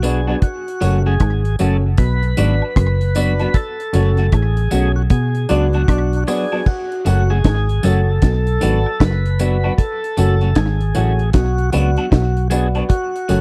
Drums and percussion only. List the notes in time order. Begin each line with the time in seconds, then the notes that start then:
0.03 closed hi-hat, tambourine
0.28 high woodblock
0.42 kick, closed hi-hat
0.68 closed hi-hat
0.81 closed hi-hat, tambourine
1.20 kick, cross-stick, closed hi-hat, high woodblock
1.45 closed hi-hat
1.59 closed hi-hat, tambourine
1.98 kick, closed hi-hat
2.23 closed hi-hat
2.37 closed hi-hat, tambourine
2.62 high woodblock
2.76 kick, cross-stick, closed hi-hat
3.01 closed hi-hat
3.15 closed hi-hat, tambourine
3.39 closed hi-hat, high woodblock
3.54 kick, closed hi-hat
3.80 closed hi-hat
3.93 closed hi-hat, tambourine
4.17 closed hi-hat
4.32 kick, cross-stick, closed hi-hat, high woodblock
4.57 closed hi-hat
4.71 closed hi-hat, tambourine
5.10 kick, closed hi-hat
5.35 closed hi-hat
5.49 closed hi-hat, tambourine
5.73 closed hi-hat, high woodblock
5.88 kick, cross-stick, closed hi-hat
6.13 closed hi-hat
6.27 cross-stick, open hi-hat, tambourine
6.52 high woodblock
6.66 kick, crash
6.92 closed hi-hat
7.06 closed hi-hat, tambourine
7.44 kick, snare, closed hi-hat, high woodblock
7.69 closed hi-hat
7.83 closed hi-hat, tambourine
8.22 kick, snare, closed hi-hat
8.47 closed hi-hat
8.61 closed hi-hat, tambourine
8.86 high woodblock
9.00 kick, snare, closed hi-hat
9.26 closed hi-hat
9.39 closed hi-hat, tambourine
9.64 high woodblock
9.78 kick, closed hi-hat
10.04 closed hi-hat
10.17 closed hi-hat, tambourine
10.41 closed hi-hat
10.55 kick, snare, closed hi-hat, high woodblock
10.81 closed hi-hat
10.95 closed hi-hat, tambourine
11.19 closed hi-hat
11.33 kick, snare, closed hi-hat
11.58 closed hi-hat
11.73 closed hi-hat, tambourine
11.96 closed hi-hat, high woodblock
12.12 kick, snare, closed hi-hat
12.37 closed hi-hat
12.51 closed hi-hat, tambourine
12.75 closed hi-hat, high woodblock
12.90 kick, closed hi-hat
13.16 closed hi-hat
13.29 closed hi-hat, tambourine